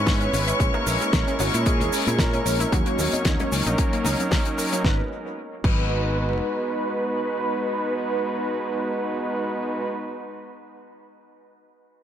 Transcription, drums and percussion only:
0.06 kick, snare, open hi-hat, high bongo, cabasa, shaker
0.21 closed hi-hat, cabasa
0.33 open hi-hat, high bongo, cabasa, shaker
0.48 closed hi-hat, cabasa, shaker
0.60 kick, closed hi-hat, cabasa, shaker
0.74 high bongo, cabasa
0.86 open hi-hat, cabasa, shaker
1.01 closed hi-hat, high bongo, cabasa, shaker
1.13 kick, snare, closed hi-hat, cabasa, shaker
1.28 closed hi-hat, cabasa
1.39 open hi-hat, high bongo, cabasa, shaker
1.54 closed hi-hat, cabasa, shaker
1.66 kick, closed hi-hat, high bongo, cabasa, shaker
1.81 closed hi-hat, cabasa
1.93 open hi-hat, cabasa, shaker
2.07 closed hi-hat, high bongo, high conga, cabasa, shaker
2.19 kick, snare, closed hi-hat, cabasa, shaker
2.33 closed hi-hat, high bongo, cabasa
2.46 open hi-hat, cabasa, shaker
2.60 closed hi-hat, cabasa, shaker
2.72 kick, closed hi-hat, high bongo, cabasa, shaker
2.86 closed hi-hat, cabasa
2.99 open hi-hat, high bongo, cabasa, shaker
3.13 closed hi-hat, high conga, cabasa, shaker
3.25 kick, snare, closed hi-hat, cabasa, shaker
3.40 closed hi-hat, high bongo, low conga, cabasa
3.52 open hi-hat, cabasa, shaker
3.66 closed hi-hat, high bongo, cabasa, shaker
3.78 kick, closed hi-hat, cabasa, shaker
3.93 closed hi-hat, cabasa
4.04 open hi-hat, high bongo, high conga, cabasa, shaker
4.20 closed hi-hat, high conga, cabasa, shaker
4.31 kick, snare, open hi-hat, high bongo, cabasa, shaker
4.45 closed hi-hat, cabasa
4.58 open hi-hat, cabasa, shaker
4.73 closed hi-hat, high bongo, cabasa, shaker
4.84 kick, snare
5.64 kick, crash

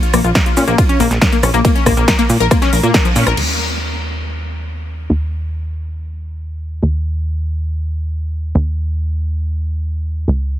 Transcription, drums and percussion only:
0.03 closed hi-hat, shaker
0.14 cross-stick, open hi-hat, shaker
0.24 closed hi-hat, shaker
0.35 kick, snare, closed hi-hat, ride, shaker
0.46 closed hi-hat, shaker
0.57 open hi-hat, shaker
0.68 closed hi-hat, shaker
0.78 kick, closed hi-hat, ride, shaker
0.89 closed hi-hat, shaker
1.00 open hi-hat, shaker
1.11 snare, closed hi-hat, shaker
1.21 kick, snare, closed hi-hat, ride, shaker
1.32 closed hi-hat, shaker
1.43 cross-stick, open hi-hat, shaker
1.54 closed hi-hat, shaker
1.65 kick, closed hi-hat, ride, shaker
1.76 closed hi-hat, shaker
1.86 kick, cross-stick, open hi-hat, shaker
1.97 closed hi-hat, shaker
2.08 kick, snare, closed hi-hat, ride, shaker
2.19 closed hi-hat, shaker
2.30 open hi-hat, shaker
2.40 closed hi-hat, shaker
2.51 kick, cross-stick, closed hi-hat, ride, shaker
2.62 snare, closed hi-hat, shaker
2.73 open hi-hat, shaker
2.83 shaker
2.94 kick, snare, closed hi-hat, ride, shaker
3.05 closed hi-hat, shaker
3.16 open hi-hat, shaker
3.27 cross-stick, closed hi-hat, shaker
3.37 crash

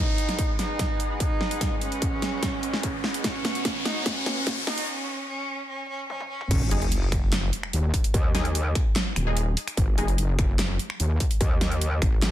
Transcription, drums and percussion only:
0.18 closed hi-hat
0.29 snare, closed hi-hat
0.39 kick, closed hi-hat
0.59 snare, closed hi-hat
0.79 kick, snare, closed hi-hat
1.00 closed hi-hat
1.20 kick, closed hi-hat
1.41 snare
1.51 closed hi-hat
1.61 kick, snare, closed hi-hat
1.81 closed hi-hat
1.92 closed hi-hat
2.02 kick, closed hi-hat
2.22 snare, closed hi-hat
2.43 kick, snare, closed hi-hat
2.63 closed hi-hat
2.73 snare
2.83 kick, closed hi-hat
3.04 snare
3.14 closed hi-hat
3.24 kick, snare, closed hi-hat
3.45 snare, closed hi-hat
3.55 closed hi-hat
3.65 kick, snare, closed hi-hat
3.85 snare, closed hi-hat
4.06 kick, snare, closed hi-hat
4.26 snare, closed hi-hat
4.47 kick, snare, closed hi-hat
4.67 snare
4.78 closed hi-hat
6.10 high tom
6.20 high tom
6.41 mid tom
6.51 kick, closed hi-hat, crash
6.71 closed hi-hat
6.82 closed hi-hat
6.92 closed hi-hat
7.12 finger snap, kick, open hi-hat
7.33 snare, clap, closed hi-hat
7.53 closed hi-hat
7.63 finger snap
7.73 closed hi-hat
7.94 kick, open hi-hat
8.04 closed hi-hat
8.14 kick, closed hi-hat
8.35 snare, closed hi-hat
8.45 closed hi-hat
8.55 closed hi-hat
8.75 finger snap, kick, open hi-hat
8.96 snare, clap, closed hi-hat
9.16 finger snap, closed hi-hat
9.37 closed hi-hat
9.57 open hi-hat
9.68 finger snap, closed hi-hat
9.77 kick, closed hi-hat
9.98 closed hi-hat
10.08 closed hi-hat
10.18 closed hi-hat
10.39 finger snap, kick, open hi-hat
10.59 snare, clap, closed hi-hat
10.79 closed hi-hat
10.90 finger snap
11.00 closed hi-hat
11.20 kick, open hi-hat
11.31 closed hi-hat
11.41 kick, closed hi-hat
11.61 snare, closed hi-hat
11.72 closed hi-hat
11.81 closed hi-hat
12.02 finger snap, kick, open hi-hat
12.22 snare, clap, closed hi-hat

